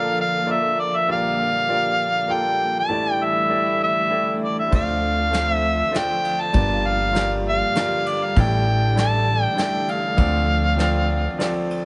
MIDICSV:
0, 0, Header, 1, 6, 480
1, 0, Start_track
1, 0, Key_signature, -1, "minor"
1, 0, Tempo, 606673
1, 857, Time_signature, 3, 2, 24, 8
1, 9376, End_track
2, 0, Start_track
2, 0, Title_t, "Harmonica"
2, 0, Program_c, 0, 22
2, 0, Note_on_c, 0, 77, 99
2, 149, Note_off_c, 0, 77, 0
2, 165, Note_on_c, 0, 77, 102
2, 402, Note_on_c, 0, 76, 92
2, 414, Note_off_c, 0, 77, 0
2, 631, Note_on_c, 0, 74, 84
2, 643, Note_off_c, 0, 76, 0
2, 763, Note_on_c, 0, 76, 100
2, 775, Note_off_c, 0, 74, 0
2, 870, Note_off_c, 0, 76, 0
2, 884, Note_on_c, 0, 77, 117
2, 1837, Note_on_c, 0, 79, 106
2, 1849, Note_off_c, 0, 77, 0
2, 2187, Note_off_c, 0, 79, 0
2, 2210, Note_on_c, 0, 81, 107
2, 2471, Note_off_c, 0, 81, 0
2, 2471, Note_on_c, 0, 79, 107
2, 2565, Note_on_c, 0, 76, 97
2, 2577, Note_off_c, 0, 79, 0
2, 3029, Note_off_c, 0, 76, 0
2, 3034, Note_on_c, 0, 76, 108
2, 3477, Note_off_c, 0, 76, 0
2, 3516, Note_on_c, 0, 74, 76
2, 3620, Note_off_c, 0, 74, 0
2, 3630, Note_on_c, 0, 76, 84
2, 3738, Note_off_c, 0, 76, 0
2, 3761, Note_on_c, 0, 77, 105
2, 4363, Note_off_c, 0, 77, 0
2, 4363, Note_on_c, 0, 76, 105
2, 4724, Note_on_c, 0, 79, 97
2, 4736, Note_off_c, 0, 76, 0
2, 5071, Note_on_c, 0, 81, 107
2, 5083, Note_off_c, 0, 79, 0
2, 5433, Note_on_c, 0, 77, 101
2, 5444, Note_off_c, 0, 81, 0
2, 5793, Note_off_c, 0, 77, 0
2, 5928, Note_on_c, 0, 77, 111
2, 6397, Note_on_c, 0, 74, 85
2, 6409, Note_off_c, 0, 77, 0
2, 6526, Note_on_c, 0, 77, 83
2, 6537, Note_off_c, 0, 74, 0
2, 6644, Note_on_c, 0, 79, 94
2, 6656, Note_off_c, 0, 77, 0
2, 7111, Note_off_c, 0, 79, 0
2, 7124, Note_on_c, 0, 81, 106
2, 7456, Note_off_c, 0, 81, 0
2, 7456, Note_on_c, 0, 79, 106
2, 7597, Note_off_c, 0, 79, 0
2, 7597, Note_on_c, 0, 79, 96
2, 7837, Note_on_c, 0, 77, 89
2, 7849, Note_off_c, 0, 79, 0
2, 9270, Note_off_c, 0, 77, 0
2, 9376, End_track
3, 0, Start_track
3, 0, Title_t, "Grand piano"
3, 0, Program_c, 1, 0
3, 0, Control_c, 1, 64, 127
3, 0, Note_on_c, 1, 34, 51
3, 0, Note_on_c, 1, 46, 52
3, 0, Note_on_c, 1, 58, 63
3, 0, Note_on_c, 1, 65, 57
3, 0, Note_on_c, 1, 69, 62
3, 0, Note_on_c, 1, 74, 64
3, 269, Note_off_c, 1, 65, 0
3, 270, Note_off_c, 1, 58, 0
3, 274, Note_off_c, 1, 69, 0
3, 276, Note_off_c, 1, 74, 0
3, 366, Note_on_c, 1, 65, 62
3, 367, Note_on_c, 1, 58, 59
3, 369, Note_on_c, 1, 69, 61
3, 371, Note_on_c, 1, 74, 71
3, 752, Note_off_c, 1, 58, 0
3, 752, Note_off_c, 1, 65, 0
3, 753, Note_off_c, 1, 69, 0
3, 754, Note_off_c, 1, 74, 0
3, 819, Note_off_c, 1, 46, 0
3, 820, Note_off_c, 1, 34, 0
3, 854, Note_on_c, 1, 58, 69
3, 858, Note_on_c, 1, 65, 58
3, 859, Note_on_c, 1, 67, 61
3, 860, Note_on_c, 1, 34, 52
3, 861, Note_on_c, 1, 46, 55
3, 862, Note_on_c, 1, 74, 78
3, 867, Control_c, 1, 64, 0
3, 996, Control_c, 1, 64, 127
3, 1236, Note_off_c, 1, 58, 0
3, 1238, Note_off_c, 1, 65, 0
3, 1238, Note_off_c, 1, 67, 0
3, 1240, Note_off_c, 1, 74, 0
3, 1333, Note_on_c, 1, 58, 61
3, 1338, Note_on_c, 1, 65, 61
3, 1340, Note_on_c, 1, 67, 59
3, 1346, Note_on_c, 1, 74, 74
3, 1715, Note_off_c, 1, 58, 0
3, 1718, Note_off_c, 1, 65, 0
3, 1719, Note_off_c, 1, 67, 0
3, 1722, Note_off_c, 1, 74, 0
3, 1803, Note_on_c, 1, 58, 65
3, 1811, Note_on_c, 1, 65, 59
3, 1811, Note_on_c, 1, 67, 62
3, 1815, Note_on_c, 1, 69, 72
3, 2191, Note_off_c, 1, 58, 0
3, 2194, Note_off_c, 1, 65, 0
3, 2194, Note_off_c, 1, 67, 0
3, 2196, Note_off_c, 1, 69, 0
3, 2266, Note_off_c, 1, 34, 0
3, 2267, Note_off_c, 1, 46, 0
3, 2283, Note_on_c, 1, 64, 67
3, 2285, Note_on_c, 1, 33, 52
3, 2289, Note_on_c, 1, 57, 70
3, 2290, Note_on_c, 1, 67, 62
3, 2291, Note_on_c, 1, 45, 55
3, 2302, Note_on_c, 1, 74, 79
3, 2307, Control_c, 1, 64, 0
3, 2433, Control_c, 1, 64, 127
3, 2671, Note_off_c, 1, 64, 0
3, 2674, Note_off_c, 1, 57, 0
3, 2674, Note_off_c, 1, 67, 0
3, 2680, Note_off_c, 1, 74, 0
3, 2762, Note_on_c, 1, 57, 66
3, 2765, Note_on_c, 1, 64, 56
3, 2767, Note_on_c, 1, 67, 54
3, 2773, Note_on_c, 1, 74, 72
3, 3152, Note_off_c, 1, 57, 0
3, 3153, Note_off_c, 1, 64, 0
3, 3154, Note_off_c, 1, 67, 0
3, 3157, Note_off_c, 1, 74, 0
3, 3245, Note_on_c, 1, 57, 63
3, 3249, Note_on_c, 1, 64, 54
3, 3250, Note_on_c, 1, 67, 55
3, 3257, Note_on_c, 1, 74, 66
3, 3634, Note_off_c, 1, 57, 0
3, 3636, Note_off_c, 1, 64, 0
3, 3637, Note_off_c, 1, 67, 0
3, 3640, Note_off_c, 1, 74, 0
3, 3704, Note_off_c, 1, 33, 0
3, 3707, Note_off_c, 1, 45, 0
3, 3722, Note_on_c, 1, 57, 66
3, 3726, Note_on_c, 1, 38, 48
3, 3726, Note_on_c, 1, 50, 50
3, 3731, Note_on_c, 1, 65, 62
3, 3732, Note_on_c, 1, 72, 63
3, 3738, Note_on_c, 1, 74, 71
3, 3750, Control_c, 1, 64, 0
3, 3890, Control_c, 1, 64, 127
3, 4113, Note_off_c, 1, 57, 0
3, 4117, Note_off_c, 1, 65, 0
3, 4118, Note_off_c, 1, 72, 0
3, 4121, Note_off_c, 1, 74, 0
3, 4201, Note_on_c, 1, 65, 54
3, 4202, Note_on_c, 1, 57, 64
3, 4211, Note_on_c, 1, 72, 56
3, 4215, Note_on_c, 1, 77, 74
3, 4593, Note_off_c, 1, 57, 0
3, 4593, Note_off_c, 1, 65, 0
3, 4598, Note_off_c, 1, 72, 0
3, 4600, Note_off_c, 1, 77, 0
3, 4679, Note_on_c, 1, 57, 67
3, 4681, Note_on_c, 1, 65, 60
3, 4689, Note_on_c, 1, 72, 59
3, 4689, Note_on_c, 1, 74, 70
3, 5072, Note_off_c, 1, 57, 0
3, 5072, Note_off_c, 1, 65, 0
3, 5077, Note_off_c, 1, 72, 0
3, 5077, Note_off_c, 1, 74, 0
3, 5144, Note_off_c, 1, 38, 0
3, 5144, Note_off_c, 1, 50, 0
3, 5163, Note_on_c, 1, 55, 67
3, 5171, Note_on_c, 1, 65, 59
3, 5172, Note_on_c, 1, 31, 52
3, 5172, Note_on_c, 1, 43, 53
3, 5175, Note_on_c, 1, 70, 67
3, 5176, Note_on_c, 1, 74, 76
3, 5193, Control_c, 1, 64, 0
3, 5318, Control_c, 1, 64, 127
3, 5553, Note_off_c, 1, 55, 0
3, 5557, Note_off_c, 1, 65, 0
3, 5559, Note_off_c, 1, 70, 0
3, 5560, Note_off_c, 1, 74, 0
3, 5642, Note_on_c, 1, 65, 61
3, 5645, Note_on_c, 1, 55, 66
3, 5653, Note_on_c, 1, 70, 56
3, 5654, Note_on_c, 1, 74, 71
3, 6031, Note_off_c, 1, 65, 0
3, 6033, Note_off_c, 1, 55, 0
3, 6037, Note_off_c, 1, 70, 0
3, 6037, Note_off_c, 1, 74, 0
3, 6135, Note_on_c, 1, 55, 65
3, 6138, Note_on_c, 1, 65, 58
3, 6142, Note_on_c, 1, 70, 64
3, 6149, Note_on_c, 1, 74, 75
3, 6517, Note_off_c, 1, 55, 0
3, 6518, Note_off_c, 1, 65, 0
3, 6521, Note_off_c, 1, 70, 0
3, 6524, Note_off_c, 1, 74, 0
3, 6582, Note_off_c, 1, 31, 0
3, 6582, Note_off_c, 1, 43, 0
3, 6613, Note_on_c, 1, 55, 66
3, 6621, Note_on_c, 1, 64, 64
3, 6622, Note_on_c, 1, 33, 62
3, 6624, Note_on_c, 1, 69, 60
3, 6626, Note_on_c, 1, 45, 57
3, 6630, Control_c, 1, 64, 0
3, 6630, Note_on_c, 1, 74, 75
3, 6788, Control_c, 1, 64, 127
3, 6996, Note_off_c, 1, 55, 0
3, 7000, Note_off_c, 1, 64, 0
3, 7001, Note_off_c, 1, 69, 0
3, 7004, Note_off_c, 1, 74, 0
3, 7086, Note_on_c, 1, 55, 67
3, 7090, Note_on_c, 1, 64, 61
3, 7099, Note_on_c, 1, 69, 64
3, 7099, Note_on_c, 1, 74, 75
3, 7472, Note_off_c, 1, 55, 0
3, 7474, Note_off_c, 1, 64, 0
3, 7479, Note_off_c, 1, 69, 0
3, 7479, Note_off_c, 1, 74, 0
3, 7559, Note_on_c, 1, 55, 65
3, 7567, Note_on_c, 1, 64, 63
3, 7576, Note_on_c, 1, 74, 75
3, 7577, Note_on_c, 1, 69, 62
3, 7948, Note_off_c, 1, 55, 0
3, 7952, Note_off_c, 1, 64, 0
3, 7957, Note_off_c, 1, 69, 0
3, 7957, Note_off_c, 1, 74, 0
3, 8026, Note_off_c, 1, 33, 0
3, 8029, Note_off_c, 1, 45, 0
3, 8042, Note_on_c, 1, 53, 73
3, 8047, Note_on_c, 1, 60, 65
3, 8049, Note_on_c, 1, 69, 67
3, 8050, Note_on_c, 1, 38, 53
3, 8051, Note_on_c, 1, 50, 59
3, 8060, Note_on_c, 1, 74, 80
3, 8066, Control_c, 1, 64, 0
3, 8192, Control_c, 1, 64, 127
3, 8430, Note_off_c, 1, 53, 0
3, 8433, Note_off_c, 1, 60, 0
3, 8433, Note_off_c, 1, 69, 0
3, 8439, Note_off_c, 1, 74, 0
3, 8519, Note_on_c, 1, 53, 78
3, 8527, Note_on_c, 1, 60, 76
3, 8529, Note_on_c, 1, 69, 68
3, 8539, Note_on_c, 1, 74, 79
3, 8910, Note_off_c, 1, 53, 0
3, 8914, Note_off_c, 1, 60, 0
3, 8915, Note_off_c, 1, 69, 0
3, 8920, Note_off_c, 1, 74, 0
3, 9008, Note_on_c, 1, 53, 76
3, 9008, Note_on_c, 1, 60, 64
3, 9015, Note_on_c, 1, 74, 84
3, 9019, Note_on_c, 1, 69, 66
3, 9376, Note_off_c, 1, 38, 0
3, 9376, Note_off_c, 1, 50, 0
3, 9376, Note_off_c, 1, 53, 0
3, 9376, Note_off_c, 1, 60, 0
3, 9376, Note_off_c, 1, 69, 0
3, 9376, Note_off_c, 1, 74, 0
3, 9376, End_track
4, 0, Start_track
4, 0, Title_t, "String section"
4, 0, Program_c, 2, 48
4, 0, Note_on_c, 2, 50, 74
4, 0, Note_on_c, 2, 53, 71
4, 0, Note_on_c, 2, 58, 75
4, 0, Note_on_c, 2, 65, 82
4, 0, Note_on_c, 2, 69, 71
4, 840, Note_off_c, 2, 69, 0
4, 849, Note_on_c, 2, 55, 74
4, 2265, Note_off_c, 2, 65, 0
4, 2268, Note_off_c, 2, 50, 0
4, 2269, Note_off_c, 2, 53, 0
4, 2269, Note_off_c, 2, 58, 0
4, 2300, Note_on_c, 2, 64, 87
4, 2301, Note_on_c, 2, 57, 73
4, 2302, Note_on_c, 2, 52, 71
4, 2303, Note_on_c, 2, 50, 78
4, 3708, Note_off_c, 2, 55, 0
4, 3728, Note_off_c, 2, 64, 0
4, 3729, Note_off_c, 2, 52, 0
4, 3744, Note_on_c, 2, 60, 65
4, 3751, Note_on_c, 2, 65, 77
4, 3754, Note_on_c, 2, 53, 67
4, 5156, Note_off_c, 2, 57, 0
4, 5157, Note_off_c, 2, 50, 0
4, 5170, Note_off_c, 2, 60, 0
4, 5181, Note_on_c, 2, 50, 79
4, 5185, Note_on_c, 2, 58, 68
4, 5190, Note_on_c, 2, 55, 71
4, 6596, Note_off_c, 2, 65, 0
4, 6597, Note_off_c, 2, 53, 0
4, 6606, Note_off_c, 2, 58, 0
4, 6618, Note_on_c, 2, 52, 77
4, 6618, Note_on_c, 2, 57, 73
4, 6622, Note_on_c, 2, 62, 94
4, 8031, Note_off_c, 2, 55, 0
4, 8041, Note_off_c, 2, 52, 0
4, 8044, Note_off_c, 2, 62, 0
4, 8066, Note_on_c, 2, 65, 80
4, 8069, Note_on_c, 2, 60, 73
4, 8073, Note_on_c, 2, 53, 76
4, 9376, Note_off_c, 2, 50, 0
4, 9376, Note_off_c, 2, 53, 0
4, 9376, Note_off_c, 2, 57, 0
4, 9376, Note_off_c, 2, 60, 0
4, 9376, Note_off_c, 2, 65, 0
4, 9376, End_track
5, 0, Start_track
5, 0, Title_t, "Upright bass"
5, 0, Program_c, 3, 32
5, 3740, Note_on_c, 3, 38, 91
5, 4592, Note_off_c, 3, 38, 0
5, 5175, Note_on_c, 3, 31, 100
5, 6027, Note_off_c, 3, 31, 0
5, 6617, Note_on_c, 3, 33, 101
5, 7466, Note_off_c, 3, 33, 0
5, 8050, Note_on_c, 3, 38, 95
5, 8905, Note_off_c, 3, 38, 0
5, 9376, End_track
6, 0, Start_track
6, 0, Title_t, "Drums"
6, 3737, Note_on_c, 9, 51, 56
6, 3738, Note_on_c, 9, 36, 96
6, 3816, Note_off_c, 9, 51, 0
6, 3817, Note_off_c, 9, 36, 0
6, 4217, Note_on_c, 9, 51, 47
6, 4228, Note_on_c, 9, 38, 72
6, 4296, Note_off_c, 9, 51, 0
6, 4307, Note_off_c, 9, 38, 0
6, 4700, Note_on_c, 9, 51, 55
6, 4711, Note_on_c, 9, 38, 76
6, 4779, Note_off_c, 9, 51, 0
6, 4791, Note_off_c, 9, 38, 0
6, 4941, Note_on_c, 9, 51, 45
6, 5020, Note_off_c, 9, 51, 0
6, 5170, Note_on_c, 9, 51, 53
6, 5177, Note_on_c, 9, 36, 99
6, 5249, Note_off_c, 9, 51, 0
6, 5256, Note_off_c, 9, 36, 0
6, 5655, Note_on_c, 9, 51, 49
6, 5666, Note_on_c, 9, 38, 71
6, 5734, Note_off_c, 9, 51, 0
6, 5745, Note_off_c, 9, 38, 0
6, 6133, Note_on_c, 9, 51, 52
6, 6144, Note_on_c, 9, 38, 74
6, 6212, Note_off_c, 9, 51, 0
6, 6223, Note_off_c, 9, 38, 0
6, 6378, Note_on_c, 9, 51, 49
6, 6457, Note_off_c, 9, 51, 0
6, 6616, Note_on_c, 9, 51, 55
6, 6619, Note_on_c, 9, 36, 96
6, 6695, Note_off_c, 9, 51, 0
6, 6698, Note_off_c, 9, 36, 0
6, 7097, Note_on_c, 9, 51, 52
6, 7108, Note_on_c, 9, 38, 74
6, 7177, Note_off_c, 9, 51, 0
6, 7188, Note_off_c, 9, 38, 0
6, 7578, Note_on_c, 9, 51, 54
6, 7589, Note_on_c, 9, 38, 70
6, 7657, Note_off_c, 9, 51, 0
6, 7668, Note_off_c, 9, 38, 0
6, 7820, Note_on_c, 9, 51, 50
6, 7899, Note_off_c, 9, 51, 0
6, 8055, Note_on_c, 9, 36, 104
6, 8057, Note_on_c, 9, 51, 56
6, 8134, Note_off_c, 9, 36, 0
6, 8136, Note_off_c, 9, 51, 0
6, 8534, Note_on_c, 9, 51, 51
6, 8545, Note_on_c, 9, 38, 74
6, 8613, Note_off_c, 9, 51, 0
6, 8624, Note_off_c, 9, 38, 0
6, 9016, Note_on_c, 9, 51, 53
6, 9027, Note_on_c, 9, 38, 71
6, 9095, Note_off_c, 9, 51, 0
6, 9107, Note_off_c, 9, 38, 0
6, 9261, Note_on_c, 9, 51, 44
6, 9340, Note_off_c, 9, 51, 0
6, 9376, End_track
0, 0, End_of_file